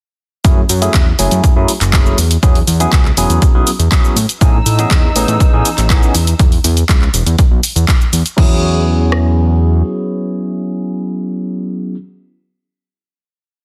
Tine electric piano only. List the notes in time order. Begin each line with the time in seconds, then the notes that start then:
0.44 F#3 A3 C#4 E4 G#4
0.82 F#3 A3 C#4 E4 G#4
1.19 F#3 A3 C#4 E4 G#4
1.56 F#3 A3 C#4 E4 G#4
1.93 F#3 A3 C#4 E4 G#4
2.43 F#3 B3 C#4 E4 G#4
2.80 F#3 B3 C#4 E4 G#4
3.17 F#3 B3 C#4 E4 G#4
3.54 F#3 B3 C#4 E4 G#4
3.91 F#3 B3 C#4 E4 G#4
4.41 E3 B3 C#4 D#4 G#4
4.79 E3 B3 C#4 D#4 G#4
5.15 E3 B3 C#4 D#4 G#4
5.53 E3 B3 C#4 D#4 G#4
5.90 E3 B3 C#4 D#4 G#4
8.37 F#3 B3 C#4 E4 G#4